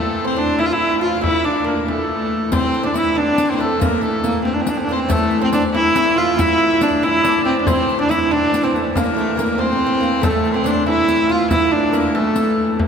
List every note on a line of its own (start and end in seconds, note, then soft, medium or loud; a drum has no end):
0.00 2.53 A2 medium
0.00 2.53 E3 medium
0.00 0.27 A3 medium
0.00 0.24 A4 medium
0.25 0.36 C4 medium
0.25 0.39 C4 medium
0.25 0.56 C5 medium
0.36 0.58 D4 medium
0.36 0.61 D4 medium
0.58 0.70 E4 medium
0.58 0.67 E4 medium
0.58 0.70 E5 medium
0.58 frame drum medium
0.66 0.74 F4 medium
0.71 1.01 E4 medium
0.71 1.01 E4 loud
0.71 1.04 E5 medium
0.81 frame drum soft
1.01 1.16 F4 medium
1.01 1.22 F4 medium
1.01 1.24 F5 medium
1.01 frame drum soft
1.17 1.21 F4 medium
1.21 1.44 E4 medium
1.21 1.47 E4 medium
1.21 1.44 E5 medium
1.21 frame drum medium
1.44 1.66 D4 medium
1.44 1.69 D4 medium
1.44 1.65 D5 medium
1.64 1.87 A#3 medium
1.64 1.88 A#3 medium
1.64 1.86 A#4 medium
1.88 2.48 A3 medium
1.88 2.49 A3 medium
1.88 2.49 A4 medium
1.88 frame drum medium
2.10 frame drum soft
2.52 7.67 A2 medium
2.52 7.67 E3 medium
2.52 2.83 C4 medium
2.52 2.87 C4 loud
2.52 2.82 C5 medium
2.52 riq medium
2.52 frame drum medium
2.74 riq soft
2.83 2.94 D4 medium
2.83 2.96 D4 medium
2.83 2.99 D5 medium
2.94 3.15 E4 medium
2.94 3.18 E4 medium
2.94 3.12 E5 medium
2.94 riq medium
3.12 3.53 D4 medium
3.12 3.20 E5 medium
3.17 3.51 D4 loud
3.17 3.51 D5 medium
3.17 frame drum medium
3.38 riq medium
3.38 frame drum soft
3.50 3.57 A#3 medium
3.50 3.53 C4 medium
3.50 3.59 C4 medium
3.50 3.55 C5 medium
3.55 3.79 A3 medium
3.55 3.82 A3 medium
3.55 3.60 C4 medium
3.55 3.62 C5 medium
3.60 3.82 A4 medium
3.60 riq soft
3.60 frame drum soft
3.80 4.01 A#3 medium
3.80 4.04 A#3 medium
3.80 4.02 A#4 medium
3.80 riq medium
3.80 frame drum medium
4.01 4.23 A3 medium
4.01 4.43 A4 medium
4.01 riq soft
4.23 4.44 A#3 medium
4.23 riq medium
4.45 4.55 C4 medium
4.45 frame drum medium
4.54 4.63 D4 medium
4.61 4.71 C4 medium
4.67 4.79 D4 medium
4.67 riq medium
4.67 frame drum soft
4.77 4.86 C4 medium
4.84 4.94 D4 medium
4.89 5.10 C4 medium
4.89 5.00 C5 medium
4.89 riq soft
4.89 frame drum soft
4.93 5.12 C4 medium
5.09 5.42 A3 medium
5.09 5.42 A3 loud
5.09 5.43 A4 medium
5.09 riq medium
5.09 frame drum medium
5.31 riq soft
5.42 5.74 C4 medium
5.42 5.53 C4 medium
5.42 5.52 C5 medium
5.53 5.63 D4 medium
5.53 5.73 D5 medium
5.53 riq medium
5.74 6.19 E4 loud
5.74 5.94 E4 medium
5.74 5.95 E5 medium
5.74 frame drum medium
5.95 6.15 E4 medium
5.95 6.36 E5 medium
5.95 riq medium
5.95 frame drum soft
6.16 6.36 F4 medium
6.16 6.41 F4 loud
6.16 riq soft
6.16 frame drum soft
6.37 6.81 E4 medium
6.37 6.83 E4 loud
6.37 6.99 E5 loud
6.37 riq medium
6.37 frame drum medium
6.81 7.02 D4 medium
6.81 7.05 D4 medium
6.81 riq medium
6.81 frame drum soft
7.03 7.24 E4 medium
7.03 7.45 E4 loud
7.03 7.26 E5 medium
7.03 riq soft
7.03 frame drum medium
7.24 7.45 D4 medium
7.24 7.68 D5 medium
7.24 riq medium
7.24 frame drum soft
7.45 7.66 C4 medium
7.45 7.59 C4 medium
7.61 7.68 D4 medium
7.67 12.78 A2 medium
7.67 12.79 E3 medium
7.67 7.99 C4 medium
7.67 7.98 C4 medium
7.67 8.01 C5 medium
7.67 riq medium
7.67 frame drum medium
7.89 riq soft
7.99 8.09 D4 medium
7.99 8.12 D4 medium
7.99 8.09 D5 medium
8.09 8.31 E4 medium
8.09 8.33 E4 medium
8.09 8.19 E5 medium
8.09 riq medium
8.31 8.63 D4 medium
8.31 8.66 D4 loud
8.31 8.67 D5 medium
8.31 frame drum medium
8.53 riq medium
8.53 frame drum soft
8.64 8.96 C4 medium
8.64 8.77 C4 medium
8.75 8.96 A3 medium
8.75 riq soft
8.75 frame drum soft
8.95 9.16 A#3 medium
8.95 9.55 A#4 medium
8.95 riq medium
8.95 frame drum medium
9.16 9.37 A3 medium
9.16 riq soft
9.37 9.60 A#3 medium
9.37 9.62 A#3 medium
9.37 riq medium
9.58 9.71 C4 medium
9.58 10.25 C4 loud
9.58 10.25 C5 medium
9.58 frame drum medium
9.72 9.85 C4 medium
9.81 frame drum soft
9.87 10.02 C4 medium
10.00 10.21 A#3 medium
10.00 riq soft
10.22 10.55 A3 medium
10.22 10.58 A3 medium
10.22 10.55 A4 medium
10.22 riq medium
10.22 frame drum medium
10.45 riq soft
10.54 10.64 C4 medium
10.54 10.68 C4 medium
10.54 10.86 C5 medium
10.64 10.86 D4 medium
10.64 10.87 D4 medium
10.64 riq medium
10.86 11.29 E4 medium
10.86 11.33 E4 medium
10.86 11.31 E5 medium
10.86 frame drum medium
11.08 riq medium
11.29 11.50 F4 medium
11.29 11.51 F4 medium
11.29 11.52 F5 medium
11.29 riq soft
11.29 frame drum soft
11.50 11.70 E4 medium
11.50 11.73 E4 medium
11.50 11.75 E5 loud
11.50 riq medium
11.50 frame drum medium
11.71 11.94 D4 medium
11.71 11.96 D4 medium
11.71 11.94 D5 medium
11.71 frame drum soft
11.92 12.14 A#3 medium
11.92 12.15 A#3 medium
11.92 12.16 A#4 medium
11.92 riq medium
11.92 frame drum soft
12.15 12.74 A3 medium
12.15 12.75 A3 medium
12.15 12.79 A4 medium
12.15 riq soft
12.15 frame drum medium
12.36 riq medium
12.58 frame drum soft
12.78 12.88 A2 medium
12.78 12.88 E3 medium
12.78 frame drum medium